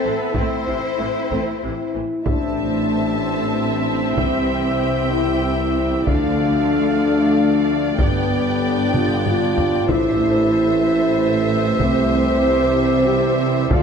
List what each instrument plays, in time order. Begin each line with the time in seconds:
Already playing: violin section C4 C5, woodwind section E4 A4 C5 E5, cello section A4
0.04 double bass section A1, viola section E3 A3
0.19 violin section B3 B4
0.33 double bass section A1, french horn section A3 C4, viola section A3 C4, violin section C4 C5, cello section E4, taiko
0.67 double bass section A1, viola section C3 E3
0.99 double bass section A1, viola section E3 A3
1.31 double bass section A1, viola section A3 C4, french horn section E4, taiko
1.63 double bass section A1, viola section C3 E3, french horn section E4
1.94 double bass section A1, viola section E3 A3
2.25 tuba A1, double bass section A1, cello section A2, trombone section E3 C4, viola section C4, french horn section D4, woodwind section E4 A4 C5 E5, violin section E5 A5, taiko
4.16 double bass section C2, tuba C2, cello section C3, french horn section C4, woodwind section G4, violin section G5, taiko
5.11 french horn section E4
5.43 french horn section E4
6.07 double bass section D2, tuba D2, cello section D3, trombone section F3 A3, viola section A3, french horn section D4, woodwind section D4 A4 F5, violin section D5 F5, taiko
7.98 tuba G1, double bass section G1, cello section G2, trombone section D3 D4, french horn section B3, viola section B3, woodwind section G4 D5 G5, violin section G5, taiko
8.93 french horn section F4, taiko mid
9.26 french horn section F4, taiko low-mid
9.58 taiko low
9.89 double bass section A1, tuba A1, cello section A2, trombone section E3, viola section A3, french horn section E4, woodwind section E4 A4 C5 E5, violin section C5 E5, taiko
10.54 trombone section C4
11.80 double bass section C2, tuba C2, cello section C3, french horn section C4, woodwind section G4, taiko
12.44 viola section G3
13.07 french horn section G4
13.71 double bass section D2, tuba D2, cello section D3, trombone section D3 D4, viola section F3, woodwind section D4 A4 D5 F5, french horn section F4, violin section A4 D5, taiko